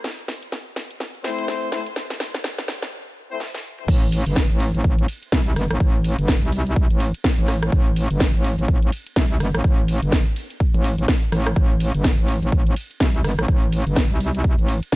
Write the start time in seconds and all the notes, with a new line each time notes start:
0.04 snare, closed hi-hat
0.19 closed hi-hat
0.28 snare, open hi-hat
0.43 closed hi-hat
0.52 snare, closed hi-hat
0.76 snare, open hi-hat
0.91 closed hi-hat
1.00 snare, closed hi-hat
1.15 closed hi-hat
1.24 A3 C4 E4 C5, snare, open hi-hat
1.39 closed hi-hat
1.48 snare, closed hi-hat
1.62 closed hi-hat
1.72 A3 C4 E4 C5, snare, open hi-hat
1.86 closed hi-hat
1.96 snare, closed hi-hat
2.10 snare, closed hi-hat
2.20 snare, open hi-hat
2.34 snare, closed hi-hat
2.44 snare, closed hi-hat
2.58 snare, closed hi-hat
2.68 snare, open hi-hat
2.82 snare, closed hi-hat
3.31 A3 C4 E4 C5
3.40 snare
3.54 snare
3.78 mid tom
3.88 A1, kick, crash
4.03 closed hi-hat
4.12 open hi-hat, ride
4.26 G1, closed hi-hat
4.36 kick, snare
4.50 A1, closed hi-hat
4.60 open hi-hat, ride
4.74 A1, closed hi-hat
4.84 kick
4.99 closed hi-hat
5.08 open hi-hat, ride
5.23 closed hi-hat
5.32 C2, kick, snare
5.46 closed hi-hat
5.56 G1, cross-stick, open hi-hat, ride
5.70 A1, cross-stick, closed hi-hat
5.80 A1, kick
5.95 closed hi-hat
6.04 open hi-hat, ride
6.19 G1, closed hi-hat
6.28 kick, snare
6.43 C2, closed hi-hat
6.52 open hi-hat, ride
6.66 closed hi-hat
6.76 kick
6.91 A1, closed hi-hat
7.00 open hi-hat, ride
7.14 closed hi-hat
7.24 kick, snare
7.38 A1, closed hi-hat
7.48 cross-stick, open hi-hat, ride
7.63 cross-stick, closed hi-hat
7.72 A1, kick
7.87 closed hi-hat
7.96 open hi-hat, ride
8.11 G1, closed hi-hat
8.20 kick, snare
8.35 A1, closed hi-hat
8.44 open hi-hat, ride
8.59 A1, closed hi-hat
8.68 kick
8.82 closed hi-hat
8.92 open hi-hat, ride
9.07 closed hi-hat
9.16 C2, kick, snare
9.30 closed hi-hat
9.40 G1, cross-stick, open hi-hat, ride
9.54 A1, cross-stick, closed hi-hat
9.64 A1, kick
9.79 closed hi-hat
9.88 open hi-hat, ride
10.02 G1, closed hi-hat
10.12 kick, snare
10.26 closed hi-hat
10.36 open hi-hat, ride
10.50 closed hi-hat
10.60 kick
10.74 A1, closed hi-hat
10.84 open hi-hat, ride
10.98 A1, closed hi-hat
11.08 kick, snare
11.22 closed hi-hat
11.32 A1, cross-stick, open hi-hat, ride
11.47 cross-stick, closed hi-hat
11.56 A1, kick
11.71 closed hi-hat
11.80 open hi-hat, ride
11.94 G1, closed hi-hat
12.04 kick, snare
12.18 A1, closed hi-hat
12.28 open hi-hat, ride
12.42 A1, closed hi-hat
12.52 kick
12.67 closed hi-hat
12.76 open hi-hat, ride
12.91 closed hi-hat
13.00 C2, kick, snare
13.15 closed hi-hat
13.24 G1, cross-stick, open hi-hat, ride
13.39 A1, cross-stick, closed hi-hat
13.48 A1, kick
13.63 closed hi-hat
13.72 open hi-hat, ride
13.87 G1, closed hi-hat
13.96 kick, snare
14.10 C2, closed hi-hat
14.20 open hi-hat, ride
14.35 closed hi-hat
14.44 kick
14.58 A1, closed hi-hat
14.68 open hi-hat, ride
14.83 closed hi-hat
14.92 kick, snare